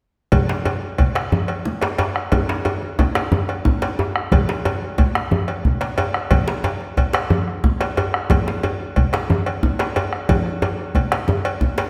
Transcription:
0.32 bombo rim soft
0.32 bombo low medium
0.32 cowbell medium
0.32 high conga medium
0.32 low conga medium
0.32 djembe bass medium
0.49 bombo rim soft
0.49 djembe slap medium
0.65 cowbell soft
0.65 djembe slap soft
0.65 djembe tone medium
0.82 high conga soft
0.98 bombo low medium
0.98 cowbell soft
0.98 high conga soft
0.98 low conga medium
1.15 bombo rim medium
1.15 cowbell soft
1.15 djembe slap medium
1.32 djembe tone medium
1.32 high conga medium
1.32 djembe bass medium
1.48 bombo rim soft
1.48 cowbell soft
1.48 djembe slap soft
1.65 low conga medium
1.81 cowbell soft
1.81 djembe slap medium
1.98 cowbell soft
1.98 djembe tone medium
2.16 bombo rim medium
2.32 bombo low medium
2.32 cowbell soft
2.32 high conga medium
2.32 djembe bass medium
2.32 low conga medium
2.49 bombo rim soft
2.49 djembe slap medium
2.65 cowbell soft
2.65 djembe slap soft
2.65 djembe tone medium
2.82 high conga soft
2.99 bombo low loud
2.99 cowbell soft
2.99 high conga soft
2.99 low conga medium
3.15 bombo rim medium
3.15 cowbell soft
3.15 djembe slap medium
3.32 high conga medium
3.32 djembe tone medium
3.32 djembe bass medium
3.48 bombo rim soft
3.48 cowbell soft
3.48 djembe slap soft
3.65 bombo low loud
3.65 low conga medium
3.82 cowbell soft
3.82 djembe slap medium
3.99 djembe tone medium
4.16 bombo rim medium
4.32 bombo rim soft
4.32 bombo low loud
4.32 cowbell medium
4.32 high conga medium
4.32 low conga medium
4.32 djembe bass medium
4.49 bombo rim soft
4.49 djembe slap medium
4.65 cowbell soft
4.65 djembe slap soft
4.65 djembe tone medium
4.82 high conga soft
4.98 bombo low loud
4.98 cowbell soft
4.98 high conga soft
4.98 low conga medium
5.15 bombo rim medium
5.15 djembe slap medium
5.31 high conga medium
5.31 djembe tone medium
5.31 djembe bass medium
5.48 bombo rim soft
5.48 cowbell soft
5.48 djembe slap soft
5.65 bombo low loud
5.65 low conga medium
5.81 cowbell soft
5.81 djembe slap soft
5.98 cowbell medium
5.98 djembe tone medium
6.14 bombo rim medium
6.31 bombo low loud
6.31 cowbell medium
6.31 djembe slap soft
6.31 high conga medium
6.31 low conga medium
6.31 djembe bass medium
6.47 djembe slap medium
6.47 high conga soft
6.64 cowbell medium
6.64 djembe tone medium
6.80 djembe slap soft
6.80 high conga soft
6.97 bombo low medium
6.97 cowbell soft
6.97 djembe slap soft
6.97 low conga medium
7.13 bombo rim medium
7.13 cowbell medium
7.13 djembe slap medium
7.13 high conga soft
7.30 djembe tone medium
7.30 high conga medium
7.30 djembe bass medium
7.47 bombo rim soft
7.47 high conga soft
7.64 bombo rim soft
7.64 bombo low loud
7.64 high conga soft
7.64 low conga medium
7.80 bombo rim soft
7.80 cowbell soft
7.80 djembe slap medium
7.97 cowbell soft
7.97 djembe slap soft
7.97 djembe tone medium
8.14 bombo rim medium
8.30 bombo rim soft
8.30 bombo low loud
8.30 cowbell medium
8.30 high conga medium
8.30 low conga medium
8.30 djembe bass medium
8.47 bombo rim soft
8.47 djembe slap medium
8.63 cowbell soft
8.63 djembe slap soft
8.63 djembe tone medium
8.80 high conga soft
8.96 bombo low loud
8.96 cowbell soft
8.96 high conga soft
8.96 low conga medium
9.13 bombo rim medium
9.13 cowbell soft
9.13 djembe slap medium
9.30 high conga medium
9.30 djembe tone medium
9.30 djembe bass medium
9.46 bombo rim soft
9.46 cowbell soft
9.46 djembe slap soft
9.63 bombo low medium
9.63 low conga medium
9.79 cowbell soft
9.79 djembe slap medium
9.96 cowbell medium
9.96 djembe tone medium
10.13 bombo rim medium
10.29 bombo low medium
10.29 cowbell medium
10.29 high conga medium
10.29 low conga medium
10.29 djembe bass medium
10.46 bombo rim soft
10.62 cowbell soft
10.62 djembe slap soft
10.62 djembe tone medium
10.79 high conga soft
10.95 bombo low medium
10.95 cowbell soft
10.95 high conga soft
10.95 low conga medium
11.12 bombo rim medium
11.12 cowbell soft
11.12 djembe slap medium
11.28 high conga medium
11.28 djembe tone medium
11.28 djembe bass medium
11.45 bombo rim soft
11.45 cowbell soft
11.45 djembe slap soft
11.61 bombo low medium
11.61 low conga medium
11.78 cowbell soft
11.78 djembe slap medium

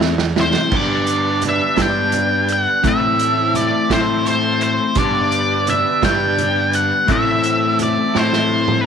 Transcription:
0.00 0.55 E2 loud
0.00 0.13 E3 medium
0.00 0.13 A3 medium
0.00 0.12 C4 medium
0.00 0.40 C4 medium
0.00 0.12 E4 loud
0.00 0.41 E4 medium
0.00 0.39 A4 medium
0.00 0.44 E5 medium
0.00 snare medium
0.18 snare medium
0.18 high conga medium
0.36 0.71 E3 medium
0.36 0.71 A3 medium
0.36 0.72 C4 medium
0.36 0.72 E4 medium
0.36 snare medium
0.36 low conga medium
0.40 0.75 C5 medium
0.54 snare medium
0.54 low conga medium
0.70 1.75 G2 medium
0.70 1.60 G2 loud
0.70 1.76 D3 medium
0.70 1.76 G3 medium
0.70 1.75 B3 medium
0.70 2.82 D4 medium
0.70 1.75 D4 medium
0.70 2.82 G4 medium
0.70 2.81 B4 medium
0.70 2.82 D5 medium
0.70 kick loud
0.70 crash medium
0.70 high conga medium
0.70 low conga medium
0.77 1.41 D5 medium
0.90 low conga soft
1.07 closed hi-hat medium
1.42 closed hi-hat medium
1.42 low conga medium
1.49 1.79 E5 medium
1.76 2.66 G2 medium
1.76 2.83 G2 medium
1.76 2.82 D3 medium
1.76 2.82 G3 medium
1.76 2.81 B3 medium
1.76 2.81 D4 medium
1.76 kick medium
1.76 snare loud
1.76 closed hi-hat medium
1.76 high conga medium
1.82 2.52 G5 medium
2.12 closed hi-hat medium
2.12 low conga medium
2.48 closed hi-hat medium
2.53 2.87 F#5 medium
2.83 3.88 A2 medium
2.83 3.72 A2 loud
2.83 3.88 E3 medium
2.83 3.88 A3 medium
2.83 4.95 C4 medium
2.83 3.89 C4 medium
2.83 4.94 E4 medium
2.83 3.89 E4 medium
2.83 4.95 A4 medium
2.83 4.95 E5 medium
2.83 kick loud
2.83 closed hi-hat medium
2.83 high conga loud
2.83 low conga medium
2.87 3.56 E5 medium
3.00 low conga soft
3.19 closed hi-hat medium
3.54 3.92 D5 medium
3.54 closed hi-hat medium
3.54 low conga medium
3.90 4.79 A2 medium
3.90 4.95 A2 medium
3.90 4.95 E3 medium
3.90 4.95 A3 medium
3.90 4.95 C4 medium
3.90 4.94 E4 medium
3.90 4.27 C5 medium
3.90 kick medium
3.90 snare loud
3.90 closed hi-hat medium
3.90 high conga medium
4.26 4.62 C5 medium
4.26 closed hi-hat medium
4.26 low conga medium
4.61 4.95 C5 medium
4.61 closed hi-hat medium
4.95 6.00 G2 medium
4.95 5.84 G2 medium
4.95 6.01 D3 medium
4.95 6.01 G3 medium
4.95 6.01 B3 medium
4.95 7.06 D4 medium
4.95 7.06 G4 medium
4.95 7.06 B4 medium
4.95 7.06 D5 medium
4.95 5.69 D5 medium
4.95 kick loud
4.95 closed hi-hat medium
4.95 high conga medium
4.95 low conga medium
4.99 6.00 D4 loud
5.15 low conga soft
5.32 closed hi-hat medium
5.67 6.02 E5 medium
5.67 closed hi-hat medium
5.67 low conga medium
6.01 6.91 G2 medium
6.01 7.05 G2 medium
6.01 7.07 D3 medium
6.01 7.07 G3 medium
6.01 7.06 B3 medium
6.01 7.06 D4 medium
6.01 6.75 G5 medium
6.01 kick medium
6.01 snare loud
6.01 closed hi-hat medium
6.01 high conga medium
6.38 closed hi-hat medium
6.38 low conga medium
6.73 7.11 F#5 medium
6.73 closed hi-hat medium
7.06 8.11 A2 medium
7.06 7.96 A2 medium
7.06 8.12 E3 medium
7.06 8.12 A3 medium
7.06 8.86 C4 medium
7.06 8.13 C4 medium
7.06 8.86 E4 medium
7.06 8.12 E4 medium
7.06 8.86 A4 medium
7.06 8.86 E5 medium
7.06 kick medium
7.06 closed hi-hat medium
7.06 high conga medium
7.06 low conga medium
7.12 7.77 E5 medium
7.44 closed hi-hat medium
7.79 8.17 D5 medium
7.79 closed hi-hat medium
7.79 low conga medium
7.98 low conga soft
8.14 8.86 A2 medium
8.14 8.86 E3 medium
8.14 8.86 A3 medium
8.14 8.86 C4 medium
8.14 8.86 E4 medium
8.14 8.86 C5 medium
8.14 snare medium
8.14 high conga medium
8.33 snare medium
8.50 high conga medium
8.68 mid tom medium
8.68 high conga medium

